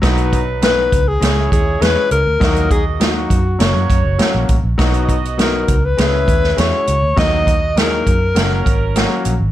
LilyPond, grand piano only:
\new Staff \with { instrumentName = "Grand piano" } { \time 4/4 \key b \major \tempo 4 = 101 <fis b dis' fis'>8 r8 <fis b dis' fis'>8 r8 <gis cis' e' gis'>8 r8 <gis cis' e' gis'>8 r8 | <fis ais dis' fis'>8 r8 <fis ais dis' fis'>8 r8 <fis ais cis' fis'>8 r8 <fis ais cis' fis'>8 r8 | <fis b dis' fis'>8 r8 <fis b dis' fis'>8 r8 <gis cis' e' gis'>8 r8 <gis cis' e' fis'>8 r8 | <fis ais dis' fis'>8 r8 <fis ais dis' gis'>8 r8 <fis ais cis' fis'>8 r8 <fis ais cis' fis'>8 r8 | }